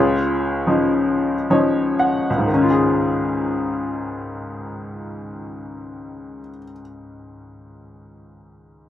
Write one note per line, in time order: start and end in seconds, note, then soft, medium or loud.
0.00 2.29 C#2 medium
0.00 1.47 F4 soft
0.00 1.47 G#4 soft
0.00 1.46 C#5 soft
0.67 1.34 F3 soft
0.67 1.35 C#4 soft
0.67 1.35 D#4 soft
1.50 2.29 F3 soft
1.50 2.29 C#4 soft
1.50 2.29 D#4 soft
1.50 1.95 C#5 soft
1.99 2.46 F#5 soft
2.30 6.40 C#2 soft
2.38 6.48 G#2 soft
2.46 6.57 D#3 soft
2.54 6.64 C#4 soft
2.62 6.72 F4 soft
2.70 6.81 G#4 soft